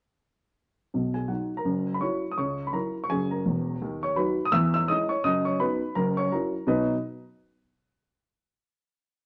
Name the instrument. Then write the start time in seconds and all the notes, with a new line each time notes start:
grand piano
0.94 B1 B2
1.14 G#4 G#5
1.28 F#3 D#4 F#4 F#5
1.57 A#4 A#5
1.65 F#1 F#2
1.94 B5
2.01 F#3 E4 F#4 C#5 C#6
2.31 D#6
2.38 C#2 C#3 C#5 C#6
2.67 B5
2.73 F#3 E4 F#4 A#4 A#5
3.04 C#6
3.10 F#1 F#2 G#4 G#5
3.31 A#4 A#5
3.46 E1 E2
3.82 D#2 D#3
4.03 C#5 C#6
4.16 F#3 D#4 F#4 B4 B5
4.45 D#6
4.52 E2 E3 E5 E6
4.74 E5 E6
4.88 G#3 C#4 E4 D#5 D#6
5.09 C#5 C#6
5.24 F#1 F#2 D#5 D#6
5.45 C#5 C#6
5.60 F#3 B3 D#4 B4 B5
5.95 F#1 F#2 A#4 A#5
6.17 C#5 C#6
6.32 F#3 C#4 E4 A#4 A#5
6.67 B2 F#3 D#4 F#4 B4 D#5 D#6